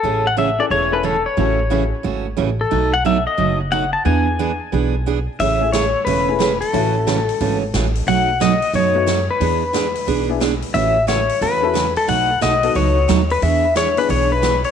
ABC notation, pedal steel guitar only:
X:1
M:4/4
L:1/8
Q:"Swing" 1/4=179
K:A
V:1 name="Pedal steel guitar"
A f e d c B A c- | c3 z4 A- | A f e ^d2 z f a | g6 z2 |
e2 c2 B3 A- | A4- A z3 | f2 ^d2 c3 B- | B4- B z3 |
e2 c2 B3 A | f2 ^d2 c3 B | e2 c B c B2 c |]